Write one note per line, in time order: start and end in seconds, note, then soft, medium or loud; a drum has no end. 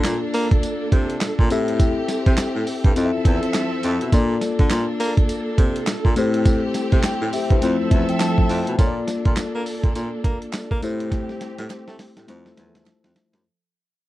0.00 1.46 A#3 medium
0.00 1.48 A#3 medium
0.00 1.46 D4 medium
0.00 1.48 D4 medium
0.00 1.47 F4 medium
0.00 1.47 A4 medium
0.00 2.93 A4 medium
0.00 1.47 D5 medium
0.04 0.20 A#2 loud
0.04 snare loud
0.04 clap loud
0.04 clap medium
0.04 closed hi-hat medium
0.04 tambourine loud
0.34 0.49 A#3 loud
0.34 open hi-hat medium
0.34 tambourine medium
0.51 kick loud
0.51 closed hi-hat medium
0.63 closed hi-hat medium
0.63 tambourine medium
0.92 1.16 C3 medium
0.92 kick loud
0.92 closed hi-hat medium
1.10 closed hi-hat medium
1.21 1.29 A#2 medium
1.21 snare loud
1.21 clap loud
1.21 clap medium
1.21 closed hi-hat medium
1.21 tambourine loud
1.39 1.49 A#2 loud
1.39 kick medium
1.50 1.99 A2 loud
1.50 2.93 C4 medium
1.50 2.95 C4 medium
1.50 2.93 E4 medium
1.50 2.94 G4 medium
1.50 2.93 G4 medium
1.50 2.94 A4 medium
1.50 2.94 E5 medium
1.50 closed hi-hat medium
1.50 tambourine medium
1.68 closed hi-hat medium
1.80 kick loud
1.80 closed hi-hat medium
1.80 tambourine medium
2.08 snare medium
2.08 closed hi-hat medium
2.08 tambourine medium
2.26 2.36 C3 loud
2.26 kick loud
2.26 closed hi-hat medium
2.37 snare loud
2.37 clap loud
2.37 closed hi-hat medium
2.37 tambourine loud
2.56 2.65 A2 loud
2.67 open hi-hat medium
2.67 tambourine medium
2.84 2.94 G2 medium
2.84 kick loud
2.84 closed hi-hat medium
2.96 3.11 F2 loud
2.96 4.11 F3 medium
2.96 4.10 C4 medium
2.96 4.11 C4 medium
2.96 4.10 E4 medium
2.96 4.11 F4 medium
2.96 4.11 A4 medium
2.96 3.05 D#5 medium
2.96 4.11 E5 medium
2.96 closed hi-hat loud
2.96 tambourine medium
3.05 4.15 E5 medium
3.14 3.19 E2 medium
3.25 3.40 E2 medium
3.25 kick loud
3.25 closed hi-hat medium
3.43 closed hi-hat medium
3.54 snare loud
3.54 clap loud
3.54 clap medium
3.54 closed hi-hat medium
3.54 tambourine loud
3.83 3.98 F2 loud
3.83 closed hi-hat medium
3.83 tambourine medium
4.01 4.11 B2 medium
4.01 closed hi-hat medium
4.12 4.37 A#2 loud
4.12 6.12 A#3 medium
4.12 6.14 A#3 medium
4.12 6.14 D4 medium
4.12 6.13 D4 medium
4.12 6.13 F4 medium
4.12 7.59 A4 medium
4.12 6.13 A4 medium
4.12 6.13 D5 medium
4.12 kick loud
4.12 closed hi-hat medium
4.12 tambourine medium
4.41 snare medium
4.41 closed hi-hat medium
4.41 tambourine medium
4.59 4.69 D3 medium
4.59 kick loud
4.59 closed hi-hat soft
4.70 4.86 A#2 loud
4.70 snare loud
4.70 clap loud
4.70 closed hi-hat medium
4.70 tambourine loud
5.00 5.15 A#3 loud
5.00 open hi-hat medium
5.00 tambourine medium
5.17 kick loud
5.17 closed hi-hat medium
5.29 closed hi-hat medium
5.29 tambourine medium
5.58 5.82 C3 loud
5.58 kick loud
5.58 closed hi-hat medium
5.76 closed hi-hat medium
5.87 5.95 A#2 medium
5.87 snare loud
5.87 clap medium
5.87 clap loud
5.87 closed hi-hat medium
5.87 tambourine loud
6.05 6.15 A#2 loud
6.05 kick medium
6.16 6.65 A2 loud
6.16 7.59 A3 medium
6.16 8.76 C4 medium
6.16 7.59 C4 medium
6.16 7.02 E4 medium
6.16 7.61 G4 medium
6.16 7.03 G4 medium
6.16 7.03 C5 medium
6.16 closed hi-hat medium
6.16 tambourine medium
6.34 closed hi-hat medium
6.45 kick loud
6.45 closed hi-hat medium
6.45 tambourine medium
6.74 snare medium
6.74 closed hi-hat medium
6.74 tambourine medium
6.92 7.02 C3 loud
6.92 kick loud
6.92 closed hi-hat soft
7.03 7.32 G5 medium
7.03 snare loud
7.03 clap loud
7.03 clap medium
7.03 closed hi-hat medium
7.03 tambourine loud
7.22 7.31 A2 loud
7.33 7.50 G4 medium
7.33 7.50 E5 medium
7.33 open hi-hat medium
7.33 tambourine medium
7.50 7.60 G2 medium
7.50 7.62 E4 medium
7.50 7.63 C5 medium
7.50 kick loud
7.50 closed hi-hat medium
7.62 7.77 F2 loud
7.62 8.78 F3 medium
7.62 8.76 A3 medium
7.62 8.76 C4 medium
7.62 8.77 E4 medium
7.62 8.77 F4 medium
7.62 8.78 A4 medium
7.62 8.77 C5 medium
7.62 8.78 E5 medium
7.62 closed hi-hat loud
7.62 tambourine medium
7.80 7.85 E2 medium
7.91 8.06 E2 loud
7.91 8.08 E5 medium
7.91 kick loud
7.91 closed hi-hat medium
8.09 8.20 G5 medium
8.09 closed hi-hat medium
8.20 8.75 A5 medium
8.20 snare loud
8.20 clap loud
8.20 closed hi-hat medium
8.20 tambourine loud
8.38 kick medium
8.49 8.64 F2 loud
8.49 open hi-hat medium
8.49 tambourine medium
8.67 8.77 B2 medium
8.67 closed hi-hat medium
8.78 9.03 A#2 medium
8.78 10.78 A#3 medium
8.78 10.80 A#3 medium
8.78 10.80 D4 medium
8.78 10.79 F4 medium
8.78 10.80 A4 medium
8.78 10.79 A4 medium
8.78 8.88 C#5 medium
8.78 kick loud
8.78 closed hi-hat medium
8.78 tambourine medium
8.87 10.83 D5 medium
9.08 snare medium
9.08 closed hi-hat medium
9.08 tambourine medium
9.25 9.35 A#2 medium
9.25 kick loud
9.25 closed hi-hat soft
9.36 9.44 A#3 medium
9.36 snare loud
9.36 clap loud
9.36 clap medium
9.36 closed hi-hat medium
9.36 tambourine loud
9.55 9.64 A#3 loud
9.66 open hi-hat medium
9.66 tambourine medium
9.84 9.93 A#2 medium
9.84 kick loud
9.84 closed hi-hat soft
9.95 10.10 A#2 loud
9.95 closed hi-hat medium
9.95 tambourine medium
10.24 10.39 A#3 loud
10.24 kick loud
10.24 closed hi-hat medium
10.42 closed hi-hat medium
10.53 snare loud
10.53 clap medium
10.53 clap loud
10.53 closed hi-hat medium
10.53 tambourine loud
10.71 10.81 A#3 loud
10.71 kick medium
10.82 11.31 A2 loud
10.82 12.25 A3 medium
10.82 12.27 A3 medium
10.82 13.42 C4 medium
10.82 12.25 E4 medium
10.82 12.27 G4 medium
10.82 12.26 G4 medium
10.82 12.26 C5 medium
10.82 closed hi-hat medium
10.82 tambourine medium
11.00 closed hi-hat medium
11.12 kick loud
11.12 snare medium
11.12 closed hi-hat medium
11.29 snare medium
11.41 snare medium
11.41 closed hi-hat medium
11.58 11.68 A2 loud
11.58 snare medium
11.58 closed hi-hat medium
11.70 11.77 A3 soft
11.70 snare medium
11.70 clap medium
11.70 closed hi-hat medium
11.88 11.97 A3 medium
11.88 snare medium
11.99 snare medium
11.99 open hi-hat medium
12.17 12.27 A2 medium
12.17 snare medium
12.17 closed hi-hat medium
12.27 12.53 F2 loud
12.27 13.44 F3 medium
12.27 13.42 A3 medium
12.27 13.42 E4 medium
12.27 13.43 F4 medium
12.27 13.44 A4 medium
12.27 13.43 C5 medium
12.27 13.44 E5 medium
12.27 snare medium
12.27 closed hi-hat medium
12.46 snare medium
12.57 12.82 E2 medium
12.57 snare loud
12.57 closed hi-hat medium
12.75 snare medium
12.75 closed hi-hat medium
12.86 12.94 F2 soft
12.86 snare loud
12.86 clap medium
12.86 closed hi-hat medium
13.04 13.14 F2 medium
13.04 snare medium
13.16 snare loud
13.16 closed hi-hat medium
13.33 13.43 F#2 medium
13.33 snare medium
13.33 closed hi-hat soft